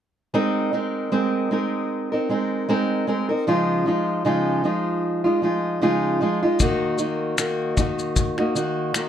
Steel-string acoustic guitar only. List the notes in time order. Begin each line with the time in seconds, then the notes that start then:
0.34 G#3 C4 D#4 A#4
0.73 G#3 C4 D#4 A#4
1.12 G#3 C4 D#4 A#4
1.51 G#3 C4 D#4 A#4
2.12 C4 D#4 A#4
2.29 G#3 C4 D#4 A#4
2.69 G#3 C4 D#4 A#4
3.07 G#3 C4 D#4 A#4
3.29 C4 D#4 A#4
3.47 C#3 F3 G#3 D#4 F4
3.86 F3 G#3 D#4 F4
4.25 C#3 F3 G#3 D#4 F4
4.64 F3 G#3 D#4 F4
5.24 G#3 D#4 F4
5.42 F3 G#3 D#4 F4
5.82 C#3 F3 G#3 D#4 F4
6.21 F3 G#3 D#4 F4
6.43 G#3 D#4 F4
6.60 D#3 A#3 D#4 F#4
6.99 D#3 A#3 D#4 F#4
7.38 D#3 A#3 D#4 F#4
7.77 D#3 A#3 D#4 F#4
8.38 A#3 D#4 F#4
8.55 D#3 A#3 D#4 F#4
8.94 D#3 A#3 D#4 F#4